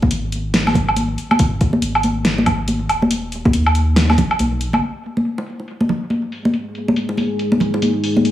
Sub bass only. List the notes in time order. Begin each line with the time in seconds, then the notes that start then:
0.11 G#1
0.75 G#1
1.39 G#1
1.82 G#1
2.46 G#1
2.90 D#1
3.54 D#2
4.39 B1